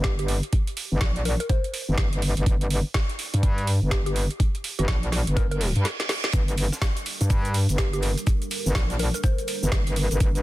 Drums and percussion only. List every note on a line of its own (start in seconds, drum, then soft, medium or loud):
0.04 kick loud
0.04 snare loud
0.04 closed hi-hat medium
0.19 closed hi-hat soft
0.28 open hi-hat loud
0.43 closed hi-hat soft
0.53 kick loud
0.53 closed hi-hat medium
0.67 closed hi-hat soft
0.77 open hi-hat loud
1.01 kick loud
1.01 snare loud
1.01 closed hi-hat medium
1.16 closed hi-hat soft
1.25 open hi-hat medium
1.40 closed hi-hat medium
1.49 kick loud
1.49 closed hi-hat medium
1.64 closed hi-hat soft
1.74 open hi-hat medium
1.98 kick loud
1.98 snare loud
1.98 closed hi-hat medium
2.13 closed hi-hat soft
2.22 open hi-hat medium
2.37 closed hi-hat soft
2.46 kick loud
2.46 closed hi-hat medium
2.61 closed hi-hat soft
2.70 open hi-hat medium
2.94 kick loud
2.94 snare loud
2.94 closed hi-hat medium
3.09 closed hi-hat soft
3.19 open hi-hat medium
3.34 closed hi-hat medium
3.43 kick loud
3.43 closed hi-hat medium
3.58 closed hi-hat soft
3.67 open hi-hat loud
3.91 kick loud
3.91 snare loud
3.91 closed hi-hat medium
4.06 closed hi-hat medium
4.16 open hi-hat medium
4.31 closed hi-hat soft
4.40 kick loud
4.40 closed hi-hat medium
4.55 closed hi-hat soft
4.64 open hi-hat loud
4.79 closed hi-hat soft
4.88 kick loud
4.88 snare loud
4.88 closed hi-hat medium
5.03 closed hi-hat soft
5.12 snare soft
5.12 open hi-hat loud
5.27 closed hi-hat medium
5.37 kick loud
5.37 closed hi-hat medium
5.51 closed hi-hat soft
5.61 open hi-hat loud
5.76 closed hi-hat soft
5.85 snare medium
5.85 closed hi-hat medium
6.00 snare medium
6.00 closed hi-hat medium
6.09 snare medium
6.09 open hi-hat loud
6.24 snare medium
6.24 closed hi-hat soft
6.33 kick loud
6.33 closed hi-hat medium
6.33 shaker medium
6.48 closed hi-hat soft
6.48 shaker soft
6.58 open hi-hat loud
6.58 shaker medium
6.72 snare medium
6.72 shaker medium
6.82 kick loud
6.82 snare loud
6.82 closed hi-hat medium
6.82 shaker medium
6.97 closed hi-hat soft
6.97 shaker soft
7.06 open hi-hat loud
7.06 shaker medium
7.21 closed hi-hat medium
7.21 shaker medium
7.30 kick loud
7.30 closed hi-hat medium
7.30 shaker medium
7.45 closed hi-hat soft
7.45 shaker soft
7.54 open hi-hat loud
7.54 shaker medium
7.69 closed hi-hat soft
7.69 shaker medium
7.78 kick loud
7.78 snare loud
7.78 closed hi-hat medium
7.78 shaker medium
7.93 closed hi-hat medium
7.93 shaker soft
8.03 open hi-hat loud
8.03 shaker medium
8.18 closed hi-hat soft
8.18 shaker medium
8.27 kick loud
8.27 closed hi-hat medium
8.27 shaker medium
8.42 closed hi-hat soft
8.42 shaker soft
8.51 open hi-hat loud
8.51 shaker medium
8.67 shaker medium
8.75 kick loud
8.75 snare loud
8.75 closed hi-hat medium
8.75 shaker medium
8.90 snare soft
8.90 closed hi-hat soft
8.90 shaker soft
8.99 open hi-hat loud
8.99 shaker medium
9.14 closed hi-hat soft
9.14 shaker medium
9.24 kick loud
9.24 closed hi-hat medium
9.24 shaker medium
9.24 shaker soft
9.38 closed hi-hat soft
9.38 shaker soft
9.48 open hi-hat loud
9.48 shaker medium
9.63 shaker medium
9.72 kick loud
9.72 snare loud
9.72 closed hi-hat medium
9.72 shaker medium
9.87 closed hi-hat medium
9.87 shaker soft
9.96 open hi-hat loud
9.96 shaker medium
10.11 closed hi-hat soft
10.11 shaker medium
10.20 kick loud
10.20 closed hi-hat medium
10.20 shaker medium
10.35 closed hi-hat soft
10.35 shaker soft